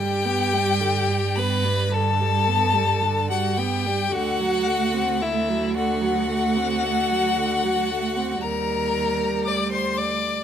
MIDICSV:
0, 0, Header, 1, 5, 480
1, 0, Start_track
1, 0, Key_signature, 1, "major"
1, 0, Tempo, 1109057
1, 1787, Tempo, 1086957
1, 1788, Time_signature, 4, 2, 24, 8
1, 2747, Tempo, 1052632
1, 4632, End_track
2, 0, Start_track
2, 0, Title_t, "Violin"
2, 0, Program_c, 0, 40
2, 0, Note_on_c, 0, 79, 100
2, 587, Note_on_c, 0, 83, 87
2, 594, Note_off_c, 0, 79, 0
2, 829, Note_on_c, 0, 81, 100
2, 836, Note_off_c, 0, 83, 0
2, 1426, Note_off_c, 0, 81, 0
2, 1429, Note_on_c, 0, 78, 88
2, 1546, Note_on_c, 0, 79, 81
2, 1552, Note_off_c, 0, 78, 0
2, 1787, Note_on_c, 0, 78, 95
2, 1794, Note_off_c, 0, 79, 0
2, 2268, Note_on_c, 0, 76, 89
2, 2274, Note_off_c, 0, 78, 0
2, 2505, Note_off_c, 0, 76, 0
2, 2508, Note_on_c, 0, 78, 102
2, 3707, Note_on_c, 0, 82, 78
2, 3714, Note_off_c, 0, 78, 0
2, 4179, Note_off_c, 0, 82, 0
2, 4182, Note_on_c, 0, 86, 79
2, 4300, Note_off_c, 0, 86, 0
2, 4305, Note_on_c, 0, 84, 77
2, 4420, Note_on_c, 0, 86, 74
2, 4427, Note_off_c, 0, 84, 0
2, 4632, Note_off_c, 0, 86, 0
2, 4632, End_track
3, 0, Start_track
3, 0, Title_t, "Violin"
3, 0, Program_c, 1, 40
3, 0, Note_on_c, 1, 67, 84
3, 601, Note_on_c, 1, 71, 81
3, 607, Note_off_c, 1, 67, 0
3, 839, Note_on_c, 1, 69, 71
3, 845, Note_off_c, 1, 71, 0
3, 1432, Note_off_c, 1, 69, 0
3, 1435, Note_on_c, 1, 66, 66
3, 1556, Note_on_c, 1, 67, 75
3, 1562, Note_off_c, 1, 66, 0
3, 1783, Note_on_c, 1, 66, 86
3, 1790, Note_off_c, 1, 67, 0
3, 2269, Note_on_c, 1, 64, 69
3, 2276, Note_off_c, 1, 66, 0
3, 2508, Note_off_c, 1, 64, 0
3, 2512, Note_on_c, 1, 66, 82
3, 3717, Note_on_c, 1, 70, 84
3, 3724, Note_off_c, 1, 66, 0
3, 4194, Note_on_c, 1, 74, 70
3, 4201, Note_off_c, 1, 70, 0
3, 4304, Note_off_c, 1, 74, 0
3, 4307, Note_on_c, 1, 72, 63
3, 4426, Note_on_c, 1, 74, 67
3, 4433, Note_off_c, 1, 72, 0
3, 4632, Note_off_c, 1, 74, 0
3, 4632, End_track
4, 0, Start_track
4, 0, Title_t, "Viola"
4, 0, Program_c, 2, 41
4, 0, Note_on_c, 2, 55, 56
4, 110, Note_on_c, 2, 59, 60
4, 116, Note_off_c, 2, 55, 0
4, 231, Note_on_c, 2, 55, 59
4, 238, Note_off_c, 2, 59, 0
4, 350, Note_on_c, 2, 50, 57
4, 357, Note_off_c, 2, 55, 0
4, 472, Note_on_c, 2, 55, 52
4, 478, Note_off_c, 2, 50, 0
4, 592, Note_on_c, 2, 59, 55
4, 599, Note_off_c, 2, 55, 0
4, 712, Note_on_c, 2, 55, 59
4, 718, Note_off_c, 2, 59, 0
4, 831, Note_off_c, 2, 55, 0
4, 834, Note_on_c, 2, 50, 62
4, 955, Note_on_c, 2, 55, 56
4, 961, Note_off_c, 2, 50, 0
4, 1071, Note_on_c, 2, 59, 60
4, 1078, Note_off_c, 2, 55, 0
4, 1186, Note_on_c, 2, 55, 56
4, 1192, Note_off_c, 2, 59, 0
4, 1309, Note_on_c, 2, 50, 61
4, 1316, Note_off_c, 2, 55, 0
4, 1427, Note_on_c, 2, 55, 56
4, 1434, Note_off_c, 2, 50, 0
4, 1549, Note_on_c, 2, 59, 53
4, 1556, Note_off_c, 2, 55, 0
4, 1670, Note_on_c, 2, 55, 57
4, 1677, Note_off_c, 2, 59, 0
4, 1783, Note_off_c, 2, 55, 0
4, 1785, Note_on_c, 2, 50, 60
4, 1909, Note_on_c, 2, 54, 62
4, 1915, Note_off_c, 2, 50, 0
4, 2026, Note_on_c, 2, 57, 53
4, 2032, Note_off_c, 2, 54, 0
4, 2144, Note_on_c, 2, 60, 56
4, 2151, Note_off_c, 2, 57, 0
4, 2268, Note_on_c, 2, 57, 59
4, 2274, Note_off_c, 2, 60, 0
4, 2386, Note_on_c, 2, 54, 56
4, 2393, Note_off_c, 2, 57, 0
4, 2504, Note_on_c, 2, 50, 65
4, 2510, Note_off_c, 2, 54, 0
4, 2621, Note_on_c, 2, 54, 61
4, 2627, Note_off_c, 2, 50, 0
4, 2740, Note_off_c, 2, 54, 0
4, 2742, Note_on_c, 2, 57, 59
4, 2869, Note_on_c, 2, 60, 52
4, 2875, Note_off_c, 2, 57, 0
4, 2992, Note_on_c, 2, 57, 57
4, 2999, Note_off_c, 2, 60, 0
4, 3114, Note_on_c, 2, 54, 52
4, 3121, Note_off_c, 2, 57, 0
4, 3236, Note_on_c, 2, 50, 54
4, 3243, Note_off_c, 2, 54, 0
4, 3358, Note_on_c, 2, 54, 49
4, 3365, Note_off_c, 2, 50, 0
4, 3478, Note_on_c, 2, 57, 55
4, 3485, Note_off_c, 2, 54, 0
4, 3595, Note_on_c, 2, 60, 51
4, 3602, Note_off_c, 2, 57, 0
4, 3711, Note_off_c, 2, 60, 0
4, 3713, Note_on_c, 2, 55, 56
4, 4632, Note_off_c, 2, 55, 0
4, 4632, End_track
5, 0, Start_track
5, 0, Title_t, "Cello"
5, 0, Program_c, 3, 42
5, 0, Note_on_c, 3, 43, 64
5, 1789, Note_on_c, 3, 38, 70
5, 1795, Note_off_c, 3, 43, 0
5, 3710, Note_off_c, 3, 38, 0
5, 3713, Note_on_c, 3, 39, 59
5, 4189, Note_on_c, 3, 38, 48
5, 4196, Note_off_c, 3, 39, 0
5, 4632, Note_off_c, 3, 38, 0
5, 4632, End_track
0, 0, End_of_file